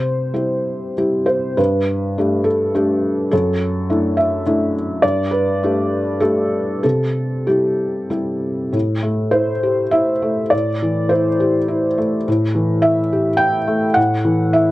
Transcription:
Already playing: C3 C5
0.34 G3 E4 G4
0.98 G3 E4 G4
1.26 C5
1.57 G2 B4
2.18 A3 D4 G4
2.44 A4
2.75 A3 D4 G4
3.31 F#2 A4
3.89 A3 D4 E4
4.17 E5
4.47 A3 D4 E4
5.02 G2 D5
5.31 B4
5.63 A3 D4 G4
6.20 A3 D4 G4 A4
6.83 C3 A4
7.47 G3 E4 G4
8.10 G3 E4 G4
8.73 A2
9.03 A3
9.31 E4 C5
9.63 G4
9.91 E4 E5
10.22 A3
10.50 A2 D5
10.83 E3
11.09 E4 C5
11.40 G4
11.68 E4
11.98 A3
12.28 A2
12.55 E3
12.82 E4 E5
13.13 G4
13.37 E4 G5
13.67 A3
13.94 A2 F#5
14.25 E3
14.53 E4 E5

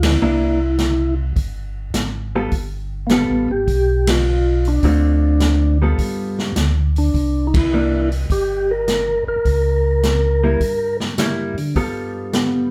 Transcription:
Already playing: D2
0.02 E4, snare, ride
0.21 C2 A#3 D4 E4
0.78 snare, closed hi-hat
1.36 G1, kick, open hi-hat
1.94 G#1, snare, closed hi-hat
2.35 G3 B3 F4 A4
2.52 G1, kick, open hi-hat
3.07 A#3, snare, closed hi-hat
3.11 G3 B3 F4 A4
3.30 A1
3.48 G#1 G4
3.67 B1, kick, open hi-hat
4.07 F4, snare, ride
4.65 D4, open hi-hat
4.83 D2 D3 A3 C4 F4, kick, open hi-hat
5.40 snare, closed hi-hat
5.82 G3 B3 F4 A4
5.98 G2, kick, open hi-hat
6.39 snare
6.56 D2, snare, closed hi-hat
6.96 D4, open hi-hat
7.14 C2, kick, open hi-hat
7.47 D#4
7.54 E4, kick, ride
7.73 E3 A#3 D4
8.12 open hi-hat
8.30 G1 G4, kick, open hi-hat
8.71 A#4
8.88 snare, closed hi-hat
9.27 G1 A#4
9.45 C#2, kick, open hi-hat
10.03 snare, closed hi-hat
10.44 G3 A#3 E4
10.60 G2, kick, open hi-hat
11.00 snare
11.18 G3 A#3 E4, snare, closed hi-hat
11.58 D3, open hi-hat
11.75 G2 G3 B3 F4 A4, kick, open hi-hat
12.33 B3, snare, closed hi-hat

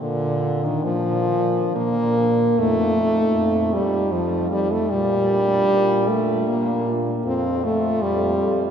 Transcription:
0.01 A#2 D3
0.44 D4
0.65 D#3
0.85 A#2 F3
1.31 D4
1.76 A#2 A#3
2.19 D4
2.58 F2 A3 D#4 F4
2.99 D#4 F4
3.36 F2
3.73 G3 D#4 F4
4.12 F2 F3
4.51 G3 D#4 F4
4.72 A3
4.90 A#2 G3
5.30 D4 F4
5.71 A#2
6.08 A3 D4 F4
6.48 A#2 A#3
6.88 D4 F4
7.24 F2 C4 F4 A4
7.61 A3 F4
7.66 A4
8.02 F2 G3
8.38 F4 A4

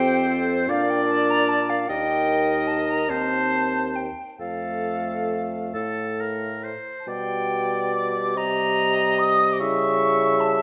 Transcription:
Already playing: F2 C4 G4 C5 G5
0.28 A4
0.68 A#2 D4 A#4 D5 F5
0.89 G5
1.08 A5
1.30 A#5
1.48 A5
1.69 F5
1.88 D#2 D#4 A#4 D#5 G5
2.67 A5
2.90 A#5
3.10 D#2 C4 C5 A5
3.95 G5
4.39 F2 A3 A4 F5
5.75 A2 A4
6.20 A#4
6.64 C5
7.00 A5
7.07 B2 G3 G4 D5 G5
7.95 D6
8.36 C3 D#5 A#5
9.19 D#6
9.53 D6
9.59 C#3 E4 E5 C#6
10.40 A5

